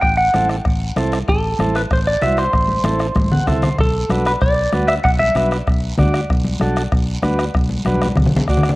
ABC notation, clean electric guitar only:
X:1
M:4/4
L:1/8
Q:1/4=192
K:Bphr
V:1 name="Clean electric guitar"
g f2 z4 z | A3 B c d e c- | c6 z2 | A3 B d3 e |
f e2 z4 z | z8 | z8 |]